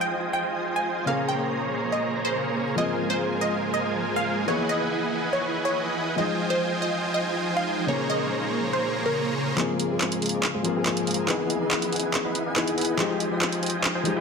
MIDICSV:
0, 0, Header, 1, 6, 480
1, 0, Start_track
1, 0, Key_signature, -4, "major"
1, 0, Tempo, 425532
1, 1211, Time_signature, 4, 2, 24, 8
1, 16023, End_track
2, 0, Start_track
2, 0, Title_t, "Synth pluck"
2, 0, Program_c, 0, 84
2, 12, Note_on_c, 0, 79, 91
2, 301, Note_off_c, 0, 79, 0
2, 376, Note_on_c, 0, 79, 91
2, 756, Note_off_c, 0, 79, 0
2, 857, Note_on_c, 0, 80, 90
2, 1142, Note_off_c, 0, 80, 0
2, 1209, Note_on_c, 0, 77, 84
2, 1404, Note_off_c, 0, 77, 0
2, 1449, Note_on_c, 0, 79, 87
2, 1740, Note_off_c, 0, 79, 0
2, 2169, Note_on_c, 0, 75, 82
2, 2460, Note_off_c, 0, 75, 0
2, 2535, Note_on_c, 0, 72, 88
2, 3038, Note_off_c, 0, 72, 0
2, 3134, Note_on_c, 0, 75, 90
2, 3422, Note_off_c, 0, 75, 0
2, 3495, Note_on_c, 0, 72, 91
2, 3781, Note_off_c, 0, 72, 0
2, 3849, Note_on_c, 0, 75, 90
2, 4140, Note_off_c, 0, 75, 0
2, 4215, Note_on_c, 0, 75, 90
2, 4595, Note_off_c, 0, 75, 0
2, 4696, Note_on_c, 0, 77, 92
2, 4982, Note_off_c, 0, 77, 0
2, 5052, Note_on_c, 0, 73, 83
2, 5245, Note_off_c, 0, 73, 0
2, 5293, Note_on_c, 0, 75, 87
2, 5581, Note_off_c, 0, 75, 0
2, 6011, Note_on_c, 0, 73, 86
2, 6301, Note_off_c, 0, 73, 0
2, 6373, Note_on_c, 0, 73, 92
2, 6878, Note_off_c, 0, 73, 0
2, 6969, Note_on_c, 0, 75, 93
2, 7260, Note_off_c, 0, 75, 0
2, 7333, Note_on_c, 0, 72, 94
2, 7620, Note_off_c, 0, 72, 0
2, 7692, Note_on_c, 0, 75, 94
2, 7981, Note_off_c, 0, 75, 0
2, 8055, Note_on_c, 0, 75, 94
2, 8435, Note_off_c, 0, 75, 0
2, 8534, Note_on_c, 0, 77, 87
2, 8821, Note_off_c, 0, 77, 0
2, 8892, Note_on_c, 0, 73, 83
2, 9085, Note_off_c, 0, 73, 0
2, 9132, Note_on_c, 0, 75, 94
2, 9421, Note_off_c, 0, 75, 0
2, 9851, Note_on_c, 0, 72, 89
2, 10140, Note_off_c, 0, 72, 0
2, 10217, Note_on_c, 0, 70, 92
2, 10719, Note_off_c, 0, 70, 0
2, 16023, End_track
3, 0, Start_track
3, 0, Title_t, "Supersaw synth"
3, 0, Program_c, 1, 81
3, 0, Note_on_c, 1, 65, 76
3, 0, Note_on_c, 1, 72, 69
3, 0, Note_on_c, 1, 75, 67
3, 0, Note_on_c, 1, 79, 71
3, 0, Note_on_c, 1, 80, 83
3, 1183, Note_off_c, 1, 65, 0
3, 1183, Note_off_c, 1, 75, 0
3, 1183, Note_off_c, 1, 79, 0
3, 1183, Note_off_c, 1, 80, 0
3, 1184, Note_off_c, 1, 72, 0
3, 1212, Note_on_c, 1, 58, 77
3, 1212, Note_on_c, 1, 72, 66
3, 1213, Note_on_c, 1, 68, 69
3, 1213, Note_on_c, 1, 73, 67
3, 1213, Note_on_c, 1, 82, 85
3, 3104, Note_off_c, 1, 58, 0
3, 3104, Note_off_c, 1, 68, 0
3, 3104, Note_off_c, 1, 72, 0
3, 3104, Note_off_c, 1, 73, 0
3, 3104, Note_off_c, 1, 82, 0
3, 3132, Note_on_c, 1, 56, 75
3, 3132, Note_on_c, 1, 70, 68
3, 3132, Note_on_c, 1, 72, 69
3, 3132, Note_on_c, 1, 80, 84
3, 3133, Note_on_c, 1, 65, 70
3, 5024, Note_off_c, 1, 56, 0
3, 5024, Note_off_c, 1, 65, 0
3, 5024, Note_off_c, 1, 70, 0
3, 5024, Note_off_c, 1, 72, 0
3, 5024, Note_off_c, 1, 80, 0
3, 5051, Note_on_c, 1, 64, 74
3, 5051, Note_on_c, 1, 71, 69
3, 5051, Note_on_c, 1, 75, 68
3, 5051, Note_on_c, 1, 78, 70
3, 5051, Note_on_c, 1, 80, 84
3, 6944, Note_off_c, 1, 64, 0
3, 6944, Note_off_c, 1, 71, 0
3, 6944, Note_off_c, 1, 75, 0
3, 6944, Note_off_c, 1, 78, 0
3, 6944, Note_off_c, 1, 80, 0
3, 6972, Note_on_c, 1, 72, 67
3, 6972, Note_on_c, 1, 75, 70
3, 6973, Note_on_c, 1, 65, 77
3, 6973, Note_on_c, 1, 79, 69
3, 6973, Note_on_c, 1, 80, 83
3, 8864, Note_off_c, 1, 65, 0
3, 8864, Note_off_c, 1, 72, 0
3, 8864, Note_off_c, 1, 75, 0
3, 8864, Note_off_c, 1, 79, 0
3, 8864, Note_off_c, 1, 80, 0
3, 8893, Note_on_c, 1, 58, 77
3, 8893, Note_on_c, 1, 68, 70
3, 8893, Note_on_c, 1, 72, 69
3, 8893, Note_on_c, 1, 73, 69
3, 8893, Note_on_c, 1, 82, 84
3, 10784, Note_off_c, 1, 58, 0
3, 10784, Note_off_c, 1, 72, 0
3, 10784, Note_off_c, 1, 73, 0
3, 10785, Note_off_c, 1, 68, 0
3, 10785, Note_off_c, 1, 82, 0
3, 10812, Note_on_c, 1, 56, 79
3, 10812, Note_on_c, 1, 68, 74
3, 10812, Note_on_c, 1, 72, 76
3, 10812, Note_on_c, 1, 82, 92
3, 11146, Note_off_c, 1, 56, 0
3, 11146, Note_off_c, 1, 68, 0
3, 11146, Note_off_c, 1, 72, 0
3, 11146, Note_off_c, 1, 82, 0
3, 11175, Note_on_c, 1, 56, 75
3, 11175, Note_on_c, 1, 72, 68
3, 11175, Note_on_c, 1, 77, 70
3, 11175, Note_on_c, 1, 84, 81
3, 11176, Note_on_c, 1, 68, 66
3, 11503, Note_off_c, 1, 56, 0
3, 11503, Note_off_c, 1, 72, 0
3, 11503, Note_off_c, 1, 77, 0
3, 11503, Note_off_c, 1, 84, 0
3, 11504, Note_off_c, 1, 68, 0
3, 11531, Note_on_c, 1, 56, 72
3, 11531, Note_on_c, 1, 68, 65
3, 11531, Note_on_c, 1, 72, 65
3, 11531, Note_on_c, 1, 77, 66
3, 11531, Note_on_c, 1, 82, 75
3, 11771, Note_off_c, 1, 56, 0
3, 11771, Note_off_c, 1, 72, 0
3, 11771, Note_off_c, 1, 77, 0
3, 11771, Note_off_c, 1, 82, 0
3, 11772, Note_off_c, 1, 68, 0
3, 11896, Note_on_c, 1, 56, 82
3, 11896, Note_on_c, 1, 68, 72
3, 11896, Note_on_c, 1, 72, 75
3, 11897, Note_on_c, 1, 77, 74
3, 11897, Note_on_c, 1, 84, 90
3, 12106, Note_off_c, 1, 56, 0
3, 12106, Note_off_c, 1, 68, 0
3, 12106, Note_off_c, 1, 72, 0
3, 12106, Note_off_c, 1, 77, 0
3, 12107, Note_off_c, 1, 84, 0
3, 12137, Note_on_c, 1, 80, 101
3, 12138, Note_on_c, 1, 56, 88
3, 12138, Note_on_c, 1, 68, 85
3, 12138, Note_on_c, 1, 72, 83
3, 12138, Note_on_c, 1, 77, 81
3, 12465, Note_off_c, 1, 56, 0
3, 12465, Note_off_c, 1, 68, 0
3, 12465, Note_off_c, 1, 72, 0
3, 12465, Note_off_c, 1, 77, 0
3, 12465, Note_off_c, 1, 80, 0
3, 12491, Note_on_c, 1, 56, 93
3, 12492, Note_on_c, 1, 68, 88
3, 12492, Note_on_c, 1, 72, 88
3, 12492, Note_on_c, 1, 77, 88
3, 12492, Note_on_c, 1, 82, 105
3, 12704, Note_off_c, 1, 56, 0
3, 12704, Note_off_c, 1, 68, 0
3, 12704, Note_off_c, 1, 72, 0
3, 12704, Note_off_c, 1, 77, 0
3, 12704, Note_off_c, 1, 82, 0
3, 12731, Note_on_c, 1, 64, 80
3, 12731, Note_on_c, 1, 71, 76
3, 12731, Note_on_c, 1, 75, 77
3, 12731, Note_on_c, 1, 78, 75
3, 12731, Note_on_c, 1, 80, 94
3, 13066, Note_off_c, 1, 64, 0
3, 13066, Note_off_c, 1, 71, 0
3, 13066, Note_off_c, 1, 75, 0
3, 13066, Note_off_c, 1, 78, 0
3, 13066, Note_off_c, 1, 80, 0
3, 13096, Note_on_c, 1, 71, 68
3, 13096, Note_on_c, 1, 78, 68
3, 13096, Note_on_c, 1, 83, 84
3, 13097, Note_on_c, 1, 64, 72
3, 13097, Note_on_c, 1, 75, 66
3, 13424, Note_off_c, 1, 64, 0
3, 13424, Note_off_c, 1, 71, 0
3, 13424, Note_off_c, 1, 75, 0
3, 13424, Note_off_c, 1, 78, 0
3, 13424, Note_off_c, 1, 83, 0
3, 13452, Note_on_c, 1, 64, 70
3, 13452, Note_on_c, 1, 71, 67
3, 13452, Note_on_c, 1, 75, 65
3, 13452, Note_on_c, 1, 78, 67
3, 13452, Note_on_c, 1, 80, 79
3, 13692, Note_off_c, 1, 64, 0
3, 13692, Note_off_c, 1, 71, 0
3, 13692, Note_off_c, 1, 75, 0
3, 13692, Note_off_c, 1, 78, 0
3, 13692, Note_off_c, 1, 80, 0
3, 13816, Note_on_c, 1, 78, 75
3, 13817, Note_on_c, 1, 64, 82
3, 13817, Note_on_c, 1, 71, 72
3, 13817, Note_on_c, 1, 75, 72
3, 13817, Note_on_c, 1, 83, 93
3, 14026, Note_off_c, 1, 78, 0
3, 14027, Note_off_c, 1, 64, 0
3, 14027, Note_off_c, 1, 71, 0
3, 14027, Note_off_c, 1, 75, 0
3, 14027, Note_off_c, 1, 83, 0
3, 14055, Note_on_c, 1, 64, 90
3, 14055, Note_on_c, 1, 71, 84
3, 14055, Note_on_c, 1, 75, 83
3, 14055, Note_on_c, 1, 78, 81
3, 14055, Note_on_c, 1, 80, 99
3, 14383, Note_off_c, 1, 71, 0
3, 14383, Note_off_c, 1, 75, 0
3, 14383, Note_off_c, 1, 78, 0
3, 14383, Note_off_c, 1, 80, 0
3, 14384, Note_off_c, 1, 64, 0
3, 14410, Note_on_c, 1, 71, 91
3, 14410, Note_on_c, 1, 75, 88
3, 14410, Note_on_c, 1, 80, 106
3, 14411, Note_on_c, 1, 64, 92
3, 14411, Note_on_c, 1, 78, 90
3, 14623, Note_off_c, 1, 71, 0
3, 14623, Note_off_c, 1, 75, 0
3, 14623, Note_off_c, 1, 78, 0
3, 14623, Note_off_c, 1, 80, 0
3, 14624, Note_off_c, 1, 64, 0
3, 14653, Note_on_c, 1, 65, 82
3, 14653, Note_on_c, 1, 72, 78
3, 14653, Note_on_c, 1, 75, 79
3, 14653, Note_on_c, 1, 80, 94
3, 14654, Note_on_c, 1, 79, 80
3, 14987, Note_off_c, 1, 65, 0
3, 14987, Note_off_c, 1, 72, 0
3, 14987, Note_off_c, 1, 75, 0
3, 14987, Note_off_c, 1, 79, 0
3, 14987, Note_off_c, 1, 80, 0
3, 15017, Note_on_c, 1, 65, 74
3, 15017, Note_on_c, 1, 72, 70
3, 15017, Note_on_c, 1, 75, 68
3, 15017, Note_on_c, 1, 79, 68
3, 15017, Note_on_c, 1, 80, 84
3, 15345, Note_off_c, 1, 65, 0
3, 15345, Note_off_c, 1, 72, 0
3, 15345, Note_off_c, 1, 75, 0
3, 15345, Note_off_c, 1, 79, 0
3, 15345, Note_off_c, 1, 80, 0
3, 15372, Note_on_c, 1, 65, 73
3, 15372, Note_on_c, 1, 72, 68
3, 15372, Note_on_c, 1, 75, 65
3, 15372, Note_on_c, 1, 79, 67
3, 15372, Note_on_c, 1, 80, 81
3, 15612, Note_off_c, 1, 65, 0
3, 15612, Note_off_c, 1, 72, 0
3, 15612, Note_off_c, 1, 75, 0
3, 15612, Note_off_c, 1, 79, 0
3, 15612, Note_off_c, 1, 80, 0
3, 15736, Note_on_c, 1, 65, 80
3, 15736, Note_on_c, 1, 80, 89
3, 15737, Note_on_c, 1, 72, 72
3, 15737, Note_on_c, 1, 75, 72
3, 15737, Note_on_c, 1, 79, 77
3, 15946, Note_off_c, 1, 65, 0
3, 15946, Note_off_c, 1, 80, 0
3, 15947, Note_off_c, 1, 72, 0
3, 15947, Note_off_c, 1, 75, 0
3, 15947, Note_off_c, 1, 79, 0
3, 15975, Note_on_c, 1, 79, 83
3, 15976, Note_on_c, 1, 65, 89
3, 15976, Note_on_c, 1, 72, 83
3, 15976, Note_on_c, 1, 75, 82
3, 15976, Note_on_c, 1, 80, 102
3, 16023, Note_off_c, 1, 65, 0
3, 16023, Note_off_c, 1, 72, 0
3, 16023, Note_off_c, 1, 75, 0
3, 16023, Note_off_c, 1, 79, 0
3, 16023, Note_off_c, 1, 80, 0
3, 16023, End_track
4, 0, Start_track
4, 0, Title_t, "Grand piano"
4, 0, Program_c, 2, 0
4, 0, Control_c, 2, 64, 127
4, 0, Note_on_c, 2, 53, 72
4, 0, Note_on_c, 2, 56, 62
4, 0, Note_on_c, 2, 63, 62
4, 1172, Note_off_c, 2, 53, 0
4, 1180, Note_off_c, 2, 56, 0
4, 1187, Note_off_c, 2, 63, 0
4, 1190, Note_on_c, 2, 49, 69
4, 1205, Note_on_c, 2, 58, 62
4, 1225, Control_c, 2, 64, 0
4, 1235, Note_on_c, 2, 68, 77
4, 1424, Control_c, 2, 64, 127
4, 3093, Note_off_c, 2, 49, 0
4, 3101, Note_off_c, 2, 58, 0
4, 3110, Note_on_c, 2, 53, 69
4, 3116, Note_off_c, 2, 68, 0
4, 3125, Note_on_c, 2, 58, 64
4, 3140, Note_on_c, 2, 60, 64
4, 3147, Control_c, 2, 64, 0
4, 3155, Note_on_c, 2, 68, 78
4, 3340, Control_c, 2, 64, 127
4, 5013, Note_off_c, 2, 53, 0
4, 5020, Note_off_c, 2, 58, 0
4, 5028, Note_off_c, 2, 60, 0
4, 5028, Note_on_c, 2, 52, 69
4, 5036, Note_off_c, 2, 68, 0
4, 5044, Note_on_c, 2, 59, 65
4, 5059, Note_on_c, 2, 75, 62
4, 5065, Control_c, 2, 64, 0
4, 5074, Note_on_c, 2, 68, 80
4, 5235, Control_c, 2, 64, 127
4, 6932, Note_off_c, 2, 52, 0
4, 6940, Note_off_c, 2, 59, 0
4, 6948, Note_off_c, 2, 75, 0
4, 6949, Note_on_c, 2, 53, 70
4, 6955, Note_off_c, 2, 68, 0
4, 6965, Note_on_c, 2, 56, 67
4, 6980, Note_on_c, 2, 63, 65
4, 6988, Control_c, 2, 64, 0
4, 7200, Control_c, 2, 64, 127
4, 8853, Note_off_c, 2, 53, 0
4, 8860, Note_off_c, 2, 56, 0
4, 8868, Note_off_c, 2, 63, 0
4, 8869, Note_on_c, 2, 49, 70
4, 8885, Note_on_c, 2, 58, 65
4, 8908, Control_c, 2, 64, 0
4, 8916, Note_on_c, 2, 68, 77
4, 9091, Control_c, 2, 64, 127
4, 10773, Note_off_c, 2, 49, 0
4, 10781, Note_off_c, 2, 58, 0
4, 10786, Note_on_c, 2, 53, 88
4, 10796, Note_off_c, 2, 68, 0
4, 10801, Note_on_c, 2, 58, 84
4, 10817, Note_on_c, 2, 60, 83
4, 10828, Control_c, 2, 64, 0
4, 10833, Note_on_c, 2, 68, 100
4, 11025, Control_c, 2, 64, 127
4, 11971, Note_off_c, 2, 53, 0
4, 11979, Note_off_c, 2, 58, 0
4, 11987, Note_off_c, 2, 60, 0
4, 11988, Note_on_c, 2, 53, 80
4, 11994, Note_off_c, 2, 68, 0
4, 12005, Note_on_c, 2, 58, 72
4, 12019, Note_on_c, 2, 60, 75
4, 12034, Note_on_c, 2, 68, 90
4, 12692, Note_off_c, 2, 53, 0
4, 12700, Note_off_c, 2, 58, 0
4, 12706, Note_on_c, 2, 52, 88
4, 12707, Note_off_c, 2, 60, 0
4, 12715, Note_off_c, 2, 68, 0
4, 12722, Note_on_c, 2, 59, 82
4, 12736, Note_on_c, 2, 63, 86
4, 12747, Control_c, 2, 64, 0
4, 12751, Note_on_c, 2, 68, 98
4, 12933, Control_c, 2, 64, 127
4, 14131, Note_off_c, 2, 52, 0
4, 14139, Note_off_c, 2, 59, 0
4, 14146, Note_off_c, 2, 63, 0
4, 14154, Note_off_c, 2, 68, 0
4, 14159, Note_on_c, 2, 52, 85
4, 14167, Note_on_c, 2, 59, 79
4, 14174, Note_on_c, 2, 63, 80
4, 14181, Note_on_c, 2, 68, 92
4, 14618, Note_off_c, 2, 52, 0
4, 14622, Note_off_c, 2, 59, 0
4, 14625, Note_off_c, 2, 63, 0
4, 14628, Note_on_c, 2, 53, 96
4, 14629, Note_off_c, 2, 68, 0
4, 14644, Note_on_c, 2, 56, 89
4, 14658, Note_on_c, 2, 63, 90
4, 14665, Control_c, 2, 64, 0
4, 14674, Note_on_c, 2, 67, 102
4, 14847, Control_c, 2, 64, 127
4, 15811, Note_off_c, 2, 53, 0
4, 15820, Note_off_c, 2, 56, 0
4, 15827, Note_off_c, 2, 63, 0
4, 15828, Note_on_c, 2, 53, 87
4, 15835, Note_off_c, 2, 67, 0
4, 15843, Note_on_c, 2, 56, 77
4, 15858, Note_on_c, 2, 63, 78
4, 15874, Note_on_c, 2, 67, 94
4, 16023, Note_off_c, 2, 53, 0
4, 16023, Note_off_c, 2, 56, 0
4, 16023, Note_off_c, 2, 63, 0
4, 16023, Note_off_c, 2, 67, 0
4, 16023, End_track
5, 0, Start_track
5, 0, Title_t, "Ambient pad"
5, 0, Program_c, 3, 92
5, 0, Note_on_c, 3, 53, 76
5, 0, Note_on_c, 3, 56, 69
5, 0, Note_on_c, 3, 75, 70
5, 1173, Note_off_c, 3, 75, 0
5, 1194, Note_off_c, 3, 53, 0
5, 1194, Note_off_c, 3, 56, 0
5, 1208, Note_on_c, 3, 49, 77
5, 1208, Note_on_c, 3, 58, 72
5, 1208, Note_on_c, 3, 68, 85
5, 3110, Note_off_c, 3, 49, 0
5, 3111, Note_off_c, 3, 58, 0
5, 3132, Note_on_c, 3, 53, 76
5, 3132, Note_on_c, 3, 58, 73
5, 5032, Note_off_c, 3, 53, 0
5, 5033, Note_off_c, 3, 58, 0
5, 5050, Note_on_c, 3, 52, 78
5, 5050, Note_on_c, 3, 75, 71
5, 6925, Note_off_c, 3, 68, 0
5, 6952, Note_off_c, 3, 52, 0
5, 6952, Note_off_c, 3, 75, 0
5, 6968, Note_on_c, 3, 56, 71
5, 6968, Note_on_c, 3, 63, 72
5, 6969, Note_on_c, 3, 53, 80
5, 8871, Note_off_c, 3, 53, 0
5, 8871, Note_off_c, 3, 56, 0
5, 8871, Note_off_c, 3, 63, 0
5, 8891, Note_on_c, 3, 58, 69
5, 8892, Note_on_c, 3, 49, 74
5, 8893, Note_on_c, 3, 68, 88
5, 10792, Note_off_c, 3, 49, 0
5, 10792, Note_off_c, 3, 58, 0
5, 10793, Note_off_c, 3, 68, 0
5, 10808, Note_on_c, 3, 60, 72
5, 10808, Note_on_c, 3, 68, 85
5, 10809, Note_on_c, 3, 58, 69
5, 10810, Note_on_c, 3, 53, 77
5, 12711, Note_off_c, 3, 58, 0
5, 12711, Note_off_c, 3, 60, 0
5, 12712, Note_off_c, 3, 53, 0
5, 12728, Note_on_c, 3, 52, 80
5, 12729, Note_on_c, 3, 63, 71
5, 14612, Note_off_c, 3, 68, 0
5, 14631, Note_off_c, 3, 52, 0
5, 14649, Note_on_c, 3, 53, 77
5, 14650, Note_on_c, 3, 56, 73
5, 14650, Note_on_c, 3, 67, 89
5, 16023, Note_off_c, 3, 53, 0
5, 16023, Note_off_c, 3, 56, 0
5, 16023, Note_off_c, 3, 63, 0
5, 16023, Note_off_c, 3, 67, 0
5, 16023, End_track
6, 0, Start_track
6, 0, Title_t, "Drums"
6, 10808, Note_on_c, 9, 39, 45
6, 10808, Note_on_c, 9, 42, 78
6, 10921, Note_off_c, 9, 39, 0
6, 10921, Note_off_c, 9, 42, 0
6, 11049, Note_on_c, 9, 42, 68
6, 11162, Note_off_c, 9, 42, 0
6, 11289, Note_on_c, 9, 39, 46
6, 11289, Note_on_c, 9, 42, 80
6, 11402, Note_off_c, 9, 39, 0
6, 11402, Note_off_c, 9, 42, 0
6, 11414, Note_on_c, 9, 42, 64
6, 11526, Note_off_c, 9, 42, 0
6, 11529, Note_on_c, 9, 42, 48
6, 11571, Note_off_c, 9, 42, 0
6, 11571, Note_on_c, 9, 42, 65
6, 11610, Note_off_c, 9, 42, 0
6, 11610, Note_on_c, 9, 42, 80
6, 11723, Note_off_c, 9, 42, 0
6, 11769, Note_on_c, 9, 39, 47
6, 11769, Note_on_c, 9, 42, 76
6, 11881, Note_off_c, 9, 39, 0
6, 11881, Note_off_c, 9, 42, 0
6, 12008, Note_on_c, 9, 42, 65
6, 12121, Note_off_c, 9, 42, 0
6, 12248, Note_on_c, 9, 39, 49
6, 12248, Note_on_c, 9, 42, 80
6, 12361, Note_off_c, 9, 39, 0
6, 12361, Note_off_c, 9, 42, 0
6, 12373, Note_on_c, 9, 42, 61
6, 12485, Note_off_c, 9, 42, 0
6, 12489, Note_on_c, 9, 42, 49
6, 12530, Note_off_c, 9, 42, 0
6, 12530, Note_on_c, 9, 42, 64
6, 12569, Note_off_c, 9, 42, 0
6, 12569, Note_on_c, 9, 42, 77
6, 12682, Note_off_c, 9, 42, 0
6, 12730, Note_on_c, 9, 39, 47
6, 12730, Note_on_c, 9, 42, 74
6, 12843, Note_off_c, 9, 39, 0
6, 12843, Note_off_c, 9, 42, 0
6, 12971, Note_on_c, 9, 42, 64
6, 13084, Note_off_c, 9, 42, 0
6, 13211, Note_on_c, 9, 39, 51
6, 13211, Note_on_c, 9, 42, 75
6, 13324, Note_off_c, 9, 39, 0
6, 13324, Note_off_c, 9, 42, 0
6, 13335, Note_on_c, 9, 42, 63
6, 13448, Note_off_c, 9, 42, 0
6, 13451, Note_on_c, 9, 42, 47
6, 13492, Note_off_c, 9, 42, 0
6, 13492, Note_on_c, 9, 42, 63
6, 13530, Note_off_c, 9, 42, 0
6, 13530, Note_on_c, 9, 42, 76
6, 13643, Note_off_c, 9, 42, 0
6, 13692, Note_on_c, 9, 39, 55
6, 13692, Note_on_c, 9, 42, 77
6, 13805, Note_off_c, 9, 39, 0
6, 13805, Note_off_c, 9, 42, 0
6, 13932, Note_on_c, 9, 42, 64
6, 14044, Note_off_c, 9, 42, 0
6, 14171, Note_on_c, 9, 39, 56
6, 14171, Note_on_c, 9, 42, 80
6, 14284, Note_off_c, 9, 39, 0
6, 14284, Note_off_c, 9, 42, 0
6, 14297, Note_on_c, 9, 42, 60
6, 14410, Note_off_c, 9, 42, 0
6, 14413, Note_on_c, 9, 42, 47
6, 14454, Note_off_c, 9, 42, 0
6, 14454, Note_on_c, 9, 42, 62
6, 14492, Note_off_c, 9, 42, 0
6, 14492, Note_on_c, 9, 42, 74
6, 14604, Note_off_c, 9, 42, 0
6, 14652, Note_on_c, 9, 39, 57
6, 14652, Note_on_c, 9, 42, 74
6, 14765, Note_off_c, 9, 39, 0
6, 14765, Note_off_c, 9, 42, 0
6, 14893, Note_on_c, 9, 42, 62
6, 15006, Note_off_c, 9, 42, 0
6, 15133, Note_on_c, 9, 39, 61
6, 15133, Note_on_c, 9, 42, 74
6, 15246, Note_off_c, 9, 39, 0
6, 15246, Note_off_c, 9, 42, 0
6, 15256, Note_on_c, 9, 42, 58
6, 15368, Note_off_c, 9, 42, 0
6, 15372, Note_on_c, 9, 42, 47
6, 15413, Note_off_c, 9, 42, 0
6, 15413, Note_on_c, 9, 42, 60
6, 15451, Note_off_c, 9, 42, 0
6, 15451, Note_on_c, 9, 42, 75
6, 15563, Note_off_c, 9, 42, 0
6, 15610, Note_on_c, 9, 39, 58
6, 15610, Note_on_c, 9, 42, 72
6, 15723, Note_off_c, 9, 39, 0
6, 15723, Note_off_c, 9, 42, 0
6, 15851, Note_on_c, 9, 42, 63
6, 15964, Note_off_c, 9, 42, 0
6, 16023, End_track
0, 0, End_of_file